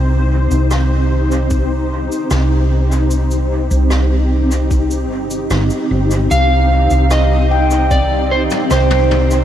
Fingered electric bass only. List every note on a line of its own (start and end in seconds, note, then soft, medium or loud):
0.00 0.47 C2 medium
0.51 2.07 C2 medium
2.31 3.67 C2 medium
3.71 5.11 C2 medium
5.11 5.46 G1 loud
5.51 5.68 G1 medium
5.91 6.26 G1 medium
6.31 6.87 C2 medium
6.91 8.47 C2 medium
8.71 9.44 C2 loud